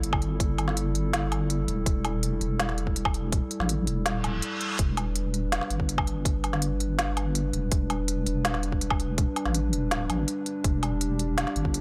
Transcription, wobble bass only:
0.00 1.67 G1 medium
1.68 1.85 E1 medium
1.86 2.40 E1 loud
2.41 3.41 E1 medium
3.60 3.89 A1 loud
3.87 4.23 E1 medium
4.24 4.41 D1 loud
4.79 5.60 E1 loud
5.70 7.52 G1 medium
7.53 7.70 E1 medium
7.72 8.25 E1 loud
8.26 9.26 E1 medium
9.46 9.74 A1 medium
9.73 9.93 E1 medium
9.91 10.08 D1 medium
10.09 10.26 A1 medium
10.64 11.46 E1 loud
11.56 11.81 G1 medium

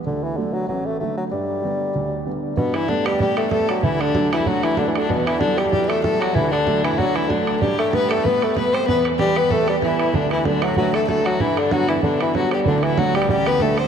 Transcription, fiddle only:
2.58 2.76 B3 medium
2.74 2.90 E4 medium
2.89 3.07 D4 medium
3.05 3.20 G4 medium
3.21 3.39 G4 medium
3.38 3.51 A4 medium
3.51 3.81 A4 medium
3.83 4.02 E4 medium
4.00 4.31 D4 medium
4.32 4.49 E4 medium
4.47 4.66 F#4 medium
4.64 4.80 E4 medium
4.78 4.89 D4 medium
4.99 5.11 D4 medium
5.09 5.28 B3 medium
5.26 5.39 E4 medium
5.40 5.59 D4 medium
5.58 5.71 G4 medium
5.71 5.84 G4 medium
5.85 6.03 A4 medium
5.85 5.91 B4 medium
6.04 6.22 A4 medium
6.20 6.36 F#4 medium
6.34 6.50 E4 medium
6.51 6.85 D4 medium
6.84 6.99 E4 medium
6.98 7.17 F#4 medium
7.15 7.31 E4 medium
7.30 7.60 D4 medium
7.60 7.90 G4 medium
7.93 8.07 B4 medium
8.05 8.10 G4 medium
8.05 8.25 A4 medium
8.23 8.55 B4 medium
8.56 8.75 B4 medium
8.73 8.87 C5 medium
8.87 9.04 B4 medium
9.19 9.38 G4 loud
9.36 9.52 B4 medium
9.50 9.69 A4 medium
9.67 9.82 G4 medium
9.83 10.15 E4 medium
10.14 10.31 D4 medium
10.32 10.44 E4 medium
10.45 10.64 D4 medium
10.62 10.76 F#4 medium
10.76 10.92 F#4 medium
10.93 11.07 A4 medium
11.07 11.27 A4 medium
11.25 11.42 F#4 medium
11.40 11.59 E4 medium
11.58 11.74 D4 medium
11.72 11.90 F#4 loud
11.89 12.03 E4 medium
12.03 12.23 D4 medium
12.21 12.35 E4 medium
12.36 12.51 F#4 medium
12.54 12.60 G4 medium
12.67 12.79 D4 medium
12.79 12.85 F#4 soft
12.84 12.99 E4 medium
12.98 13.16 F#4 medium
13.15 13.29 G4 medium
13.30 13.49 G4 medium
13.47 13.63 B4 loud
13.61 13.80 A4 medium
13.78 13.88 C5 medium

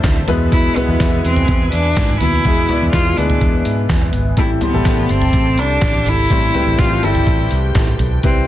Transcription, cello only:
0.53 0.78 E4 medium
0.77 1.24 B3 medium
1.25 1.69 C4 medium
1.73 2.18 D4 loud
2.21 2.89 E4 loud
2.93 3.18 F4 loud
3.17 3.65 D4 medium
4.39 4.49 E4 medium
4.63 5.12 B3 medium
5.11 5.60 C4 loud
5.59 6.10 D4 loud
6.08 6.82 E4 loud
6.80 7.05 F4 loud
7.04 7.52 E4 loud
8.24 8.47 C4 medium

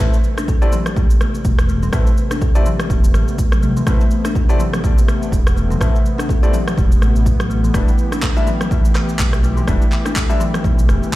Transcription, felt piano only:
0.00 0.13 A3 medium
0.00 0.14 C4 medium
0.00 0.14 E4 medium
0.00 0.14 B4 medium
0.62 0.72 A3 medium
0.62 0.72 C4 medium
0.62 0.72 E4 medium
0.62 0.72 D5 medium
1.93 2.07 A3 medium
1.93 2.07 C4 medium
1.93 2.07 E4 medium
1.93 2.07 B4 medium
2.55 2.66 A3 medium
2.55 2.66 C4 medium
2.55 2.66 E4 medium
2.55 2.66 D5 loud
3.87 4.01 A3 medium
3.87 4.01 C4 medium
3.87 4.01 E4 medium
3.87 4.01 B4 medium
4.49 4.59 A3 medium
4.49 4.60 C4 medium
4.49 4.59 E4 medium
4.49 4.59 D5 loud
5.81 5.94 A3 medium
5.81 5.94 C4 medium
5.81 5.94 E4 medium
5.81 5.94 B4 medium
6.43 6.53 A3 medium
6.43 6.53 C4 medium
6.43 6.53 E4 medium
6.43 6.53 D5 medium
7.74 7.88 G3 medium
7.74 7.88 D4 medium
7.74 7.88 E4 medium
7.74 7.88 B4 medium
8.36 8.47 G3 medium
8.36 8.47 D4 medium
8.36 8.47 E4 medium
8.36 8.47 E5 loud
9.68 9.81 G3 medium
9.68 9.81 D4 medium
9.68 9.81 E4 medium
9.68 9.81 B4 medium
10.29 10.40 G3 medium
10.29 10.40 D4 medium
10.29 10.40 E4 medium
10.29 10.40 E5 loud

